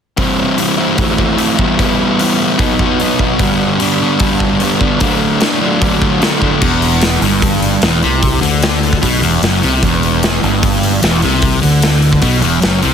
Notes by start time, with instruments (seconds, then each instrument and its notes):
0.17 distorted electric guitar C3 E3 G3 C4 E4, kick, open hi-hat
0.58 distorted electric guitar E3 G3 C4 E4, open hi-hat
0.77 distorted electric guitar G3 C4 E4
0.96 distorted electric guitar A2 E3 A3 C4 E4, kick, open hi-hat
1.18 kick
1.37 distorted electric guitar E3 A3 C4 E4, open hi-hat
1.57 distorted electric guitar E3 G3 B3 E4, kick
1.77 distorted electric guitar E3 G3 B3 E4, kick, open hi-hat
2.19 distorted electric guitar E3 G3 B3 E4, open hi-hat
2.38 distorted electric guitar G3 B3 E4
2.58 distorted electric guitar B2 F#3 B3 D#4, kick, open hi-hat
2.79 kick
2.99 distorted electric guitar B2 F#3 B3 D#4, open hi-hat
3.19 distorted electric guitar F#3 B3 D#4, kick
3.39 distorted electric guitar G2 D3 G3 B3 D4, kick, open hi-hat
3.79 distorted electric guitar D3 G3 B3 D4, open hi-hat
3.99 distorted electric guitar G3 B3 D4
4.19 distorted electric guitar G2 D3 G3 B3 D4, kick, open hi-hat
4.40 kick
4.60 distorted electric guitar D3 G3 B3 D4, open hi-hat
4.80 distorted electric guitar G3 B3 D4, kick
5.00 distorted electric guitar D3 F#3 A3 D4, kick, open hi-hat
5.41 distorted electric guitar D3 F#3 A3 D4, snare, open hi-hat
5.61 distorted electric guitar F#3 A3 D4
5.82 distorted electric guitar D3 F#3 A3 D4, kick, open hi-hat
6.02 kick
6.22 distorted electric guitar D3 F#3 A3 D4, snare, open hi-hat
6.42 distorted electric guitar F#3 A3 D4, kick
6.61 fingered electric bass E1, distorted electric guitar E2, kick, crash
6.82 open hi-hat
7.01 snare, open hi-hat
7.21 fingered electric bass G1, distorted electric guitar G2, open hi-hat
7.42 kick, open hi-hat
7.63 open hi-hat
7.82 fingered electric bass E1, distorted electric guitar E2, snare, open hi-hat
8.03 fingered electric bass C2, distorted electric guitar C3, open hi-hat
8.23 kick, open hi-hat
8.41 fingered electric bass D2, distorted electric guitar D3, open hi-hat
8.62 snare, open hi-hat
8.83 open hi-hat
8.93 kick
9.01 fingered electric bass B1, distorted electric guitar B2, kick, open hi-hat
9.22 fingered electric bass E1, distorted electric guitar E2, open hi-hat
9.42 fingered electric bass F#1, distorted electric guitar F#2, snare, open hi-hat
9.62 fingered electric bass C2, distorted electric guitar C3, open hi-hat
9.83 fingered electric bass E1, distorted electric guitar E2, kick, open hi-hat
10.03 open hi-hat
10.23 snare, open hi-hat
10.43 fingered electric bass G1, distorted electric guitar G2, open hi-hat
10.63 kick, open hi-hat
10.83 open hi-hat
11.02 fingered electric bass E1, distorted electric guitar E2, snare, open hi-hat
11.22 fingered electric bass C2, distorted electric guitar C3, open hi-hat
11.42 kick, open hi-hat
11.62 fingered electric bass D2, distorted electric guitar D3, open hi-hat
11.82 snare, open hi-hat
12.02 open hi-hat
12.13 kick
12.22 fingered electric bass B1, distorted electric guitar B2, kick, open hi-hat
12.41 fingered electric bass E1, distorted electric guitar E2, open hi-hat
12.61 fingered electric bass F#1, distorted electric guitar F#2, snare, open hi-hat
12.82 fingered electric bass C2, distorted electric guitar C3, open hi-hat